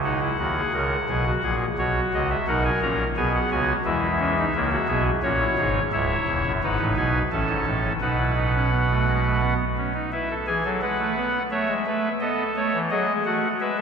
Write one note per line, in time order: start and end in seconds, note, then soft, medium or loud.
0.00 0.30 C#2 medium
0.00 0.30 C#3 medium
0.04 0.20 D#4 medium
0.04 1.55 F#5 medium
0.21 0.37 E4 medium
0.39 0.61 D#2 medium
0.39 0.61 D#3 medium
0.39 0.55 F#4 medium
0.57 0.73 G#4 medium
0.73 0.96 C#2 medium
0.73 0.96 C#3 medium
0.73 0.96 A#4 medium
1.09 1.31 B1 medium
1.09 1.31 B2 medium
1.09 1.25 G#4 medium
1.26 1.42 F#4 medium
1.43 1.66 A#1 medium
1.43 1.66 A#2 medium
1.43 1.65 G#4 medium
1.78 2.00 B1 medium
1.78 2.00 B2 medium
1.78 2.38 F#4 medium
1.78 2.00 C#5 medium
2.14 2.36 C#2 medium
2.14 2.36 C#3 medium
2.14 2.29 D#5 medium
2.31 2.46 E5 medium
2.47 2.69 B1 medium
2.47 2.70 B2 medium
2.47 2.70 D#4 medium
2.47 3.07 A#4 medium
2.47 2.63 F#5 medium
2.64 2.80 G#5 medium
2.82 3.04 A#1 medium
2.82 3.04 A#2 medium
2.82 3.04 C#4 medium
2.82 3.04 A#5 medium
3.17 3.38 B1 medium
3.17 3.38 B2 medium
3.17 3.76 B3 medium
3.17 3.38 G#4 medium
3.17 3.32 G#5 medium
3.35 3.50 F#5 medium
3.51 3.73 C#2 medium
3.51 3.73 C#3 medium
3.51 3.73 F#4 medium
3.51 3.73 G#5 medium
3.85 4.45 E2 medium
3.85 4.45 E3 medium
3.85 4.45 G#3 medium
3.85 4.07 E4 medium
3.85 5.04 E5 medium
4.19 4.35 C#4 medium
4.38 4.53 D#4 medium
4.55 4.77 C#2 medium
4.55 4.76 C#3 medium
4.55 4.76 A#3 medium
4.55 4.70 E4 medium
4.72 4.87 F#4 medium
4.88 5.10 B1 medium
4.88 5.10 B2 medium
4.88 5.10 B3 medium
4.88 5.10 G#4 medium
5.23 5.45 A#1 medium
5.23 5.45 A#2 medium
5.23 5.45 C#4 medium
5.23 5.38 F#4 medium
5.23 5.83 C#5 medium
5.40 5.56 E4 medium
5.58 5.80 G#1 medium
5.58 5.80 G#2 medium
5.58 5.80 D#4 medium
5.58 5.79 G#4 medium
5.92 6.14 C#1 medium
5.92 6.14 C#2 medium
5.92 6.52 E4 medium
5.92 6.52 C#5 medium
5.92 6.52 E5 medium
6.28 6.43 E1 medium
6.28 6.43 E2 medium
6.46 6.60 F#1 medium
6.46 6.61 F#2 medium
6.63 6.78 G#1 medium
6.63 6.78 G#2 medium
6.63 7.22 D#4 medium
6.63 7.23 B4 medium
6.63 6.84 F#5 medium
6.79 6.95 A1 medium
6.79 6.94 A2 medium
6.97 7.19 B1 medium
6.97 7.19 B2 medium
6.97 7.19 G#5 medium
7.32 7.47 A1 medium
7.32 7.47 A2 medium
7.32 7.93 C#4 medium
7.32 7.93 A4 medium
7.32 7.93 A5 medium
7.50 7.65 G#1 medium
7.50 7.65 G#2 medium
7.66 7.89 A1 medium
7.66 7.89 A2 medium
8.01 9.54 B1 medium
8.01 9.54 B2 medium
8.01 8.17 D#4 medium
8.01 9.54 B4 medium
8.01 9.54 F#5 medium
8.18 8.35 E4 medium
8.36 8.52 D#4 medium
8.54 8.70 C#4 medium
8.71 8.87 B3 medium
8.90 9.05 A3 medium
9.07 9.23 G#3 medium
9.25 9.40 A3 medium
9.42 9.64 B3 medium
9.77 9.93 C#4 medium
9.94 10.10 D#4 medium
10.12 10.35 E4 medium
10.12 10.29 B4 medium
10.12 10.34 E5 medium
10.30 10.46 A4 medium
10.47 10.63 E3 medium
10.47 10.63 G#4 medium
10.47 10.69 G#5 medium
10.65 10.81 F#3 medium
10.65 10.81 A4 medium
10.81 10.98 G#3 medium
10.81 11.43 B4 medium
10.81 11.42 F#5 medium
10.99 11.15 A3 medium
11.17 11.39 B3 medium
11.51 11.67 A3 medium
11.51 11.74 C#5 medium
11.51 12.12 E5 medium
11.68 11.85 G#3 medium
11.86 12.09 A3 medium
11.86 12.08 B4 medium
12.21 12.43 B3 loud
12.21 12.82 A4 medium
12.21 12.43 D#5 medium
12.56 12.72 A3 loud
12.56 12.79 C#5 medium
12.74 12.89 E3 medium
12.91 13.07 F#3 medium
12.91 13.13 G#4 medium
12.91 13.13 D#5 medium
13.07 13.24 G#3 medium
13.25 13.48 A3 medium
13.25 13.48 F#4 medium
13.25 13.48 F#5 medium
13.60 13.81 G#3 medium
13.60 13.77 B4 medium
13.60 13.81 E5 medium
13.78 13.81 A4 medium